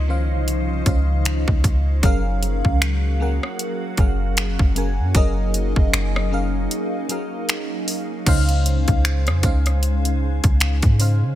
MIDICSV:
0, 0, Header, 1, 5, 480
1, 0, Start_track
1, 0, Key_signature, -5, "major"
1, 0, Tempo, 779221
1, 1250, Time_signature, 4, 2, 24, 8
1, 6992, End_track
2, 0, Start_track
2, 0, Title_t, "FM electric piano"
2, 0, Program_c, 0, 5
2, 0, Control_c, 0, 64, 127
2, 0, Note_on_c, 0, 49, 95
2, 0, Note_on_c, 0, 61, 91
2, 0, Note_on_c, 0, 65, 91
2, 0, Note_on_c, 0, 72, 91
2, 0, Note_on_c, 0, 75, 114
2, 48, Note_on_c, 0, 51, 82
2, 51, Note_off_c, 0, 61, 0
2, 51, Note_on_c, 0, 61, 72
2, 55, Note_off_c, 0, 65, 0
2, 55, Note_on_c, 0, 65, 71
2, 60, Note_off_c, 0, 72, 0
2, 60, Note_on_c, 0, 72, 73
2, 64, Note_on_c, 0, 77, 86
2, 387, Note_off_c, 0, 51, 0
2, 389, Note_off_c, 0, 61, 0
2, 391, Note_off_c, 0, 65, 0
2, 393, Note_off_c, 0, 72, 0
2, 395, Note_off_c, 0, 77, 0
2, 528, Note_off_c, 0, 49, 0
2, 528, Note_on_c, 0, 49, 75
2, 532, Note_on_c, 0, 61, 67
2, 536, Note_on_c, 0, 65, 70
2, 541, Note_on_c, 0, 72, 64
2, 544, Note_on_c, 0, 77, 77
2, 1017, Note_off_c, 0, 49, 0
2, 1019, Note_off_c, 0, 61, 0
2, 1021, Note_off_c, 0, 65, 0
2, 1024, Note_off_c, 0, 72, 0
2, 1025, Note_off_c, 0, 77, 0
2, 1249, Note_on_c, 0, 54, 100
2, 1253, Note_on_c, 0, 61, 93
2, 1256, Note_on_c, 0, 68, 91
2, 1258, Control_c, 0, 64, 0
2, 1260, Note_off_c, 0, 75, 0
2, 1261, Note_on_c, 0, 70, 98
2, 1265, Note_on_c, 0, 77, 120
2, 1366, Control_c, 0, 64, 127
2, 1738, Note_off_c, 0, 54, 0
2, 1740, Note_off_c, 0, 61, 0
2, 1741, Note_off_c, 0, 68, 0
2, 1744, Note_off_c, 0, 70, 0
2, 1746, Note_off_c, 0, 77, 0
2, 1969, Note_on_c, 0, 54, 80
2, 1974, Note_on_c, 0, 61, 76
2, 1978, Note_on_c, 0, 68, 74
2, 1983, Note_on_c, 0, 70, 75
2, 1986, Note_on_c, 0, 78, 89
2, 2308, Note_off_c, 0, 54, 0
2, 2310, Note_off_c, 0, 61, 0
2, 2312, Note_off_c, 0, 68, 0
2, 2315, Note_off_c, 0, 70, 0
2, 2316, Note_off_c, 0, 78, 0
2, 2449, Note_on_c, 0, 54, 72
2, 2453, Note_on_c, 0, 61, 71
2, 2457, Note_on_c, 0, 68, 72
2, 2461, Note_on_c, 0, 70, 68
2, 2466, Note_on_c, 0, 77, 87
2, 2788, Note_off_c, 0, 54, 0
2, 2790, Note_off_c, 0, 61, 0
2, 2792, Note_off_c, 0, 68, 0
2, 2794, Note_off_c, 0, 70, 0
2, 2797, Note_off_c, 0, 77, 0
2, 2928, Note_on_c, 0, 54, 80
2, 2932, Note_on_c, 0, 61, 72
2, 2937, Note_on_c, 0, 68, 70
2, 2941, Note_on_c, 0, 70, 75
2, 2945, Note_on_c, 0, 80, 87
2, 3104, Note_off_c, 0, 54, 0
2, 3106, Note_off_c, 0, 61, 0
2, 3108, Note_off_c, 0, 68, 0
2, 3111, Note_off_c, 0, 70, 0
2, 3112, Note_off_c, 0, 80, 0
2, 3169, Note_on_c, 0, 54, 108
2, 3173, Note_on_c, 0, 61, 92
2, 3177, Note_on_c, 0, 68, 97
2, 3181, Note_on_c, 0, 70, 96
2, 3185, Note_on_c, 0, 75, 110
2, 3658, Note_off_c, 0, 54, 0
2, 3660, Note_off_c, 0, 61, 0
2, 3662, Note_off_c, 0, 68, 0
2, 3664, Note_off_c, 0, 70, 0
2, 3666, Note_off_c, 0, 75, 0
2, 3888, Note_on_c, 0, 54, 86
2, 3893, Note_on_c, 0, 61, 75
2, 3898, Note_on_c, 0, 68, 78
2, 3901, Note_on_c, 0, 70, 77
2, 3905, Note_on_c, 0, 77, 89
2, 4227, Note_off_c, 0, 54, 0
2, 4230, Note_off_c, 0, 61, 0
2, 4232, Note_off_c, 0, 68, 0
2, 4234, Note_off_c, 0, 70, 0
2, 4236, Note_off_c, 0, 77, 0
2, 4366, Note_on_c, 0, 54, 73
2, 4371, Note_on_c, 0, 61, 67
2, 4376, Note_on_c, 0, 68, 71
2, 4380, Note_on_c, 0, 70, 71
2, 4384, Note_on_c, 0, 77, 81
2, 4856, Note_off_c, 0, 54, 0
2, 4859, Note_off_c, 0, 61, 0
2, 4861, Note_off_c, 0, 68, 0
2, 4863, Note_off_c, 0, 70, 0
2, 4865, Note_off_c, 0, 77, 0
2, 5087, Note_on_c, 0, 49, 101
2, 5091, Note_on_c, 0, 61, 93
2, 5095, Note_on_c, 0, 63, 95
2, 5098, Control_c, 0, 64, 0
2, 5100, Note_on_c, 0, 72, 95
2, 5104, Note_on_c, 0, 77, 116
2, 5197, Control_c, 0, 64, 127
2, 5577, Note_off_c, 0, 49, 0
2, 5579, Note_off_c, 0, 61, 0
2, 5581, Note_off_c, 0, 63, 0
2, 5583, Note_off_c, 0, 72, 0
2, 5585, Note_off_c, 0, 77, 0
2, 5808, Note_on_c, 0, 49, 79
2, 5812, Note_on_c, 0, 61, 77
2, 5816, Note_on_c, 0, 63, 73
2, 5820, Note_on_c, 0, 72, 71
2, 5825, Note_on_c, 0, 77, 91
2, 6470, Note_off_c, 0, 49, 0
2, 6472, Note_off_c, 0, 61, 0
2, 6474, Note_off_c, 0, 63, 0
2, 6476, Note_off_c, 0, 72, 0
2, 6478, Note_off_c, 0, 77, 0
2, 6768, Note_on_c, 0, 49, 79
2, 6773, Note_on_c, 0, 61, 68
2, 6777, Note_on_c, 0, 63, 74
2, 6780, Note_on_c, 0, 72, 70
2, 6786, Note_on_c, 0, 77, 83
2, 6944, Note_off_c, 0, 49, 0
2, 6946, Note_off_c, 0, 61, 0
2, 6948, Note_off_c, 0, 63, 0
2, 6950, Note_off_c, 0, 72, 0
2, 6953, Note_off_c, 0, 77, 0
2, 6992, End_track
3, 0, Start_track
3, 0, Title_t, "Ambient pad"
3, 0, Program_c, 1, 92
3, 0, Note_on_c, 1, 53, 80
3, 0, Note_on_c, 1, 61, 84
3, 0, Note_on_c, 1, 63, 93
3, 0, Note_on_c, 1, 72, 78
3, 1230, Note_off_c, 1, 53, 0
3, 1231, Note_off_c, 1, 63, 0
3, 1231, Note_off_c, 1, 72, 0
3, 1249, Note_on_c, 1, 58, 78
3, 1250, Note_on_c, 1, 54, 78
3, 1250, Note_on_c, 1, 66, 94
3, 3151, Note_off_c, 1, 66, 0
3, 3167, Note_on_c, 1, 63, 93
3, 5065, Note_off_c, 1, 58, 0
3, 5065, Note_off_c, 1, 61, 0
3, 5066, Note_off_c, 1, 54, 0
3, 5069, Note_off_c, 1, 63, 0
3, 5087, Note_on_c, 1, 72, 79
3, 5088, Note_on_c, 1, 56, 80
3, 5089, Note_on_c, 1, 49, 83
3, 5089, Note_on_c, 1, 68, 96
3, 6989, Note_off_c, 1, 72, 0
3, 6990, Note_off_c, 1, 56, 0
3, 6992, Note_off_c, 1, 49, 0
3, 6992, Note_off_c, 1, 68, 0
3, 6992, End_track
4, 0, Start_track
4, 0, Title_t, "808-style bass"
4, 0, Program_c, 2, 38
4, 0, Note_on_c, 2, 37, 94
4, 191, Note_on_c, 2, 36, 94
4, 200, Note_off_c, 2, 37, 0
4, 514, Note_off_c, 2, 36, 0
4, 531, Note_on_c, 2, 37, 100
4, 895, Note_off_c, 2, 37, 0
4, 910, Note_on_c, 2, 37, 95
4, 1007, Note_off_c, 2, 37, 0
4, 1012, Note_on_c, 2, 37, 108
4, 1241, Note_off_c, 2, 37, 0
4, 1252, Note_on_c, 2, 30, 111
4, 1615, Note_off_c, 2, 30, 0
4, 1631, Note_on_c, 2, 37, 103
4, 2091, Note_off_c, 2, 37, 0
4, 2451, Note_on_c, 2, 30, 100
4, 2815, Note_off_c, 2, 30, 0
4, 2831, Note_on_c, 2, 30, 99
4, 3071, Note_on_c, 2, 42, 97
4, 3081, Note_off_c, 2, 30, 0
4, 3166, Note_off_c, 2, 42, 0
4, 3171, Note_on_c, 2, 30, 109
4, 3535, Note_off_c, 2, 30, 0
4, 3550, Note_on_c, 2, 30, 100
4, 3647, Note_off_c, 2, 30, 0
4, 3652, Note_on_c, 2, 30, 95
4, 4112, Note_off_c, 2, 30, 0
4, 5093, Note_on_c, 2, 37, 101
4, 5455, Note_off_c, 2, 37, 0
4, 5471, Note_on_c, 2, 37, 105
4, 5713, Note_on_c, 2, 41, 102
4, 5723, Note_off_c, 2, 37, 0
4, 5807, Note_off_c, 2, 41, 0
4, 5812, Note_on_c, 2, 37, 101
4, 6405, Note_off_c, 2, 37, 0
4, 6430, Note_on_c, 2, 37, 101
4, 6660, Note_off_c, 2, 37, 0
4, 6670, Note_on_c, 2, 44, 101
4, 6912, Note_on_c, 2, 49, 98
4, 6921, Note_off_c, 2, 44, 0
4, 6992, Note_off_c, 2, 49, 0
4, 6992, End_track
5, 0, Start_track
5, 0, Title_t, "Drums"
5, 294, Note_on_c, 9, 42, 70
5, 356, Note_off_c, 9, 42, 0
5, 530, Note_on_c, 9, 36, 93
5, 530, Note_on_c, 9, 42, 63
5, 591, Note_off_c, 9, 42, 0
5, 592, Note_off_c, 9, 36, 0
5, 772, Note_on_c, 9, 42, 81
5, 777, Note_on_c, 9, 26, 114
5, 834, Note_off_c, 9, 42, 0
5, 839, Note_off_c, 9, 26, 0
5, 910, Note_on_c, 9, 36, 98
5, 971, Note_off_c, 9, 36, 0
5, 1011, Note_on_c, 9, 36, 93
5, 1012, Note_on_c, 9, 42, 66
5, 1072, Note_off_c, 9, 36, 0
5, 1074, Note_off_c, 9, 42, 0
5, 1251, Note_on_c, 9, 36, 120
5, 1251, Note_on_c, 9, 42, 75
5, 1312, Note_off_c, 9, 36, 0
5, 1312, Note_off_c, 9, 42, 0
5, 1494, Note_on_c, 9, 42, 69
5, 1556, Note_off_c, 9, 42, 0
5, 1631, Note_on_c, 9, 36, 76
5, 1692, Note_off_c, 9, 36, 0
5, 1735, Note_on_c, 9, 26, 114
5, 1737, Note_on_c, 9, 42, 77
5, 1797, Note_off_c, 9, 26, 0
5, 1799, Note_off_c, 9, 42, 0
5, 2115, Note_on_c, 9, 37, 64
5, 2176, Note_off_c, 9, 37, 0
5, 2213, Note_on_c, 9, 42, 70
5, 2275, Note_off_c, 9, 42, 0
5, 2448, Note_on_c, 9, 42, 63
5, 2450, Note_on_c, 9, 36, 92
5, 2510, Note_off_c, 9, 42, 0
5, 2512, Note_off_c, 9, 36, 0
5, 2691, Note_on_c, 9, 42, 78
5, 2696, Note_on_c, 9, 26, 114
5, 2753, Note_off_c, 9, 42, 0
5, 2758, Note_off_c, 9, 26, 0
5, 2830, Note_on_c, 9, 36, 99
5, 2891, Note_off_c, 9, 36, 0
5, 2933, Note_on_c, 9, 42, 68
5, 2995, Note_off_c, 9, 42, 0
5, 3170, Note_on_c, 9, 36, 122
5, 3170, Note_on_c, 9, 42, 72
5, 3232, Note_off_c, 9, 36, 0
5, 3232, Note_off_c, 9, 42, 0
5, 3414, Note_on_c, 9, 42, 62
5, 3475, Note_off_c, 9, 42, 0
5, 3550, Note_on_c, 9, 36, 79
5, 3611, Note_off_c, 9, 36, 0
5, 3656, Note_on_c, 9, 26, 113
5, 3658, Note_on_c, 9, 42, 74
5, 3718, Note_off_c, 9, 26, 0
5, 3719, Note_off_c, 9, 42, 0
5, 3796, Note_on_c, 9, 37, 90
5, 3857, Note_off_c, 9, 37, 0
5, 4134, Note_on_c, 9, 42, 68
5, 4196, Note_off_c, 9, 42, 0
5, 4370, Note_on_c, 9, 42, 63
5, 4432, Note_off_c, 9, 42, 0
5, 4612, Note_on_c, 9, 42, 83
5, 4617, Note_on_c, 9, 26, 110
5, 4673, Note_off_c, 9, 42, 0
5, 4678, Note_off_c, 9, 26, 0
5, 4853, Note_on_c, 9, 46, 74
5, 4914, Note_off_c, 9, 46, 0
5, 5091, Note_on_c, 9, 36, 121
5, 5091, Note_on_c, 9, 42, 72
5, 5092, Note_on_c, 9, 49, 93
5, 5153, Note_off_c, 9, 36, 0
5, 5153, Note_off_c, 9, 42, 0
5, 5153, Note_off_c, 9, 49, 0
5, 5228, Note_on_c, 9, 42, 48
5, 5289, Note_off_c, 9, 42, 0
5, 5334, Note_on_c, 9, 42, 66
5, 5395, Note_off_c, 9, 42, 0
5, 5468, Note_on_c, 9, 42, 51
5, 5470, Note_on_c, 9, 36, 79
5, 5530, Note_off_c, 9, 42, 0
5, 5532, Note_off_c, 9, 36, 0
5, 5574, Note_on_c, 9, 26, 120
5, 5576, Note_on_c, 9, 42, 76
5, 5636, Note_off_c, 9, 26, 0
5, 5638, Note_off_c, 9, 42, 0
5, 5708, Note_on_c, 9, 42, 43
5, 5715, Note_on_c, 9, 37, 87
5, 5770, Note_off_c, 9, 42, 0
5, 5777, Note_off_c, 9, 37, 0
5, 5810, Note_on_c, 9, 42, 69
5, 5811, Note_on_c, 9, 36, 94
5, 5871, Note_off_c, 9, 42, 0
5, 5872, Note_off_c, 9, 36, 0
5, 5949, Note_on_c, 9, 42, 52
5, 5955, Note_on_c, 9, 37, 60
5, 6011, Note_off_c, 9, 42, 0
5, 6017, Note_off_c, 9, 37, 0
5, 6054, Note_on_c, 9, 42, 67
5, 6115, Note_off_c, 9, 42, 0
5, 6192, Note_on_c, 9, 42, 54
5, 6253, Note_off_c, 9, 42, 0
5, 6429, Note_on_c, 9, 42, 60
5, 6430, Note_on_c, 9, 36, 104
5, 6490, Note_off_c, 9, 42, 0
5, 6491, Note_off_c, 9, 36, 0
5, 6532, Note_on_c, 9, 42, 79
5, 6537, Note_on_c, 9, 26, 111
5, 6594, Note_off_c, 9, 42, 0
5, 6599, Note_off_c, 9, 26, 0
5, 6668, Note_on_c, 9, 42, 50
5, 6670, Note_on_c, 9, 36, 99
5, 6730, Note_off_c, 9, 42, 0
5, 6732, Note_off_c, 9, 36, 0
5, 6773, Note_on_c, 9, 46, 76
5, 6835, Note_off_c, 9, 46, 0
5, 6992, End_track
0, 0, End_of_file